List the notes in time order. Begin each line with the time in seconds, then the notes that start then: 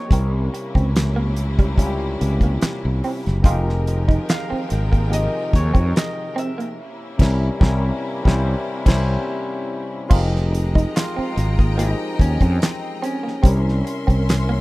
Already playing: F3 C4 D#4 G4 G#4 A#4 C#5
0.09 C2 C3 G3 A#3 C#4 E4, kick, closed hi-hat
0.13 C4 A#4
0.54 muted clean electric guitar stroke, closed hi-hat
0.75 C#2 C4, kick, closed hi-hat
0.96 snare, clap, closed hi-hat
1.16 A#3
1.37 muted clean electric guitar stroke, closed hi-hat
1.59 G3, kick, closed hi-hat
1.75 C3 G3 C#4 E4, kick, closed hi-hat
1.79 F4
1.86 G4
2.21 C#2, muted clean electric guitar stroke, closed hi-hat
2.41 A#3, kick, closed hi-hat
2.62 muted fretless electric bass stroke, snare, clap, closed hi-hat
2.85 C2
3.04 C4, open hi-hat
3.26 F#1, snare, closed hi-hat
3.42 F1 D#3 F3 G#3 C4 D#4 F4 G4 G#4 A#4 G5, kick, closed hi-hat
3.46 A#4
3.69 snare
3.87 muted clean electric guitar stroke, closed hi-hat
4.08 D#4, kick, closed hi-hat
4.29 F5, snare, clap, closed hi-hat
4.50 C4, muted fretless electric bass stroke
4.69 G#1, muted clean electric guitar stroke, snare, closed hi-hat
4.92 A#3, kick, closed hi-hat
5.09 C3 F3 A#3 D#4 G4 G#4
5.13 A#4 D#5, closed hi-hat
5.52 D#2 C#5, muted clean electric guitar stroke, kick, closed hi-hat
5.74 F2 C4, kick, closed hi-hat
5.93 D#5, muted clean electric guitar stroke, snare, closed hi-hat
5.98 clap
6.36 C4 E5, closed hi-hat
6.58 A#3, closed hi-hat
6.78 C3 A#3 C#4 E4
7.18 C2 C3 G3 C#4 E4 A#4, kick, snare, crash
7.59 C2 C3 G3 C#4 E4, kick
7.63 A#4, snare
8.23 C2 C3 G3 C#4 E4, kick
8.28 C5, snare
8.85 C2 C3 G3 C#4 E4, kick, snare, crash
8.89 C5
10.09 F1 F3 G#3 C4 D#4 F4 G4 G#4 D#5 G5 A#5, kick, crash
10.13 A#4
10.36 snare
10.52 muted clean electric guitar stroke, closed hi-hat
10.75 D#4, kick, closed hi-hat
10.96 F4, snare, clap, closed hi-hat
11.16 C4, muted fretless electric bass stroke
11.36 G#1, muted clean electric guitar stroke, snare, closed hi-hat
11.59 A#3, kick, closed hi-hat
11.75 F3 A#3 D#4 G4 G#4 C5, closed hi-hat
11.79 A#4
12.15 D#4
12.19 D#2 C#4, muted clean electric guitar stroke, kick, closed hi-hat
12.41 F2 C4, kick, closed hi-hat
12.61 C4, muted clean electric guitar stroke, snare, clap, closed hi-hat
13.02 C4 C#4, closed hi-hat
13.23 A#3
13.28 snare
13.42 C2 C3 G3 C4 C#4 E4 A#4 C#5 E5 C6, kick, closed hi-hat
13.46 A#4
13.69 snare
13.85 muted clean electric guitar stroke, closed hi-hat
14.07 C2 C4, kick, closed hi-hat
14.29 snare, clap, closed hi-hat
14.49 A#3